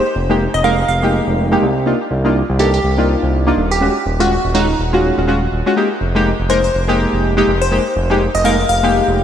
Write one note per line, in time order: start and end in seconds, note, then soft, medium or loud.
0.16 0.47 F1 loud
0.29 0.43 G#3 medium
0.29 0.43 A#3 medium
0.29 0.43 D#4 medium
0.29 0.44 G4 loud
0.54 0.84 F1 loud
0.54 0.62 D#5 medium
0.64 0.75 G#3 medium
0.64 0.75 A#3 medium
0.64 0.75 D#4 medium
0.64 0.76 A#4 loud
0.64 0.87 F5 medium
0.88 1.20 F1 medium
0.88 1.27 F5 medium
1.02 1.48 G#3 loud
1.02 1.48 A#3 medium
1.02 1.49 D#4 medium
1.02 1.49 G4 loud
1.27 1.57 F1 medium
1.51 1.65 G#3 loud
1.51 1.65 A#3 medium
1.51 1.65 D#4 medium
1.51 1.66 G4 loud
1.62 1.94 C2 loud
1.86 1.97 A#3 medium
1.86 1.97 D4 medium
1.86 1.98 D#4 medium
1.86 1.98 F4 medium
2.11 2.42 C2 loud
2.24 2.38 A#3 loud
2.24 2.38 D4 medium
2.24 2.39 D#4 medium
2.24 2.39 F4 loud
2.49 2.79 C2 loud
2.59 2.70 A#3 loud
2.59 2.70 D4 medium
2.59 2.71 D#4 medium
2.59 2.69 G4 medium
2.59 2.71 A4 loud
2.74 2.80 G4 medium
2.84 3.16 C2 medium
2.98 3.43 A#3 medium
2.98 3.43 D4 medium
2.98 3.44 D#4 medium
2.98 3.44 F4 loud
3.23 3.52 C2 medium
3.47 3.60 A#3 loud
3.47 3.60 D4 medium
3.47 3.61 D#4 medium
3.47 3.61 F4 loud
3.57 3.89 D#1 loud
3.71 3.86 G4 medium
3.81 3.92 G#3 medium
3.81 3.92 C#4 medium
3.81 3.93 F4 medium
3.81 3.93 F#4 medium
4.06 4.38 D#1 loud
4.20 4.33 G#3 medium
4.20 4.33 C#4 medium
4.20 4.34 F4 medium
4.20 4.53 F#4 medium
4.20 4.34 F#4 loud
4.45 4.74 D#1 loud
4.54 4.65 G#3 medium
4.54 4.66 C#4 medium
4.54 5.24 D#4 medium
4.54 4.66 F4 medium
4.54 4.66 F#4 loud
4.79 5.11 D#1 medium
4.93 5.15 G#3 medium
4.93 5.15 C#4 medium
4.93 5.15 F4 medium
4.93 5.15 F#4 loud
5.17 5.47 D#1 medium
5.17 5.25 G#3 medium
5.17 5.25 C#4 medium
5.17 5.26 F4 medium
5.17 5.26 F#4 medium
5.27 5.39 G#3 medium
5.27 5.39 C#4 medium
5.27 5.39 F4 medium
5.27 5.39 F#4 loud
5.52 5.62 D#1 medium
5.66 5.74 G#3 medium
5.66 5.74 C#4 medium
5.66 5.74 F4 medium
5.66 5.75 F#4 loud
5.76 5.87 G#3 medium
5.76 5.88 A#3 medium
5.76 5.88 D#4 medium
5.76 5.88 G4 medium
6.01 6.33 F1 loud
6.15 6.29 G#3 medium
6.15 6.29 A#3 medium
6.15 6.29 D#4 medium
6.15 6.29 G4 loud
6.40 6.69 F1 loud
6.49 6.61 G#3 medium
6.49 6.61 A#3 medium
6.49 6.61 D#4 medium
6.49 6.61 A#4 loud
6.49 6.59 C5 medium
6.64 6.71 C5 medium
6.74 7.06 F1 medium
6.88 7.34 G#3 medium
6.88 7.34 A#3 medium
6.88 7.34 D#4 medium
6.88 7.34 G4 loud
7.13 7.42 F1 medium
7.37 7.50 G#3 loud
7.37 7.51 A#3 medium
7.37 7.51 D#4 medium
7.37 7.51 G4 loud
7.47 7.79 F1 loud
7.61 7.76 C5 medium
7.71 7.82 G#3 medium
7.71 7.83 A#3 medium
7.71 7.83 D#4 medium
7.71 7.83 G4 medium
7.96 8.28 F1 loud
8.10 8.24 G#3 medium
8.10 8.24 A#3 medium
8.10 8.24 D#4 medium
8.10 8.24 G4 loud
8.35 8.64 F1 loud
8.35 8.43 D#5 medium
8.44 8.56 G#3 loud
8.44 8.56 A#3 medium
8.44 8.56 D#4 medium
8.44 8.56 A#4 loud
8.44 8.67 F5 medium
8.69 9.01 F1 medium
8.69 9.08 F5 medium
8.83 9.24 G#3 medium
8.83 9.24 A#3 medium
8.83 9.24 D#4 medium
8.83 9.24 G4 loud
9.08 9.24 F1 medium